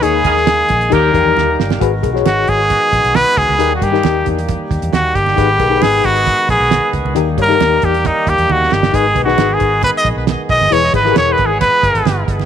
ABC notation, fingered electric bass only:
X:1
M:4/4
L:1/16
Q:1/4=135
K:D#phr
V:1 name="Fingered electric bass" clef=bass
D,,2 D,,4 A,,,2 D,,2 E,, E,, D,,2 =G,,,2 | [K:G#m] G,,,2 B,,,2 G,,,2 G,,,3 z A,,, B,,,2 z C,, C,, | D,,2 =G,,2 D,,2 E,,3 z D,, E,, D,,2 =G,,,2 | G,,,2 B,,,2 G,,,2 G,,,3 z A,,, B,,,2 z C,, C,, |
D,,2 =G,,2 D,,2 E,,3 z D,, E,, D,,2 =G,,,2 | G,,,2 B,,,2 G,,,2 G,,,3 z A,,, B,,,2 z B,,, =G,,, | E,,,2 G,,,2 E,,,2 G,,,3 z =G,,, ^G,,, =G,,,2 G,,,2 |]